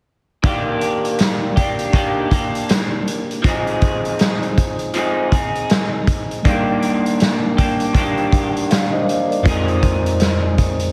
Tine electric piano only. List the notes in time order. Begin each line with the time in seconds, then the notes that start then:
6.43 G3 D#4 D5
6.48 G#4
6.55 A#4
8.71 D5 F5
8.93 C5 D#5
9.30 A#4 D5
9.42 F2 G#3 C4
9.46 D#4 A#4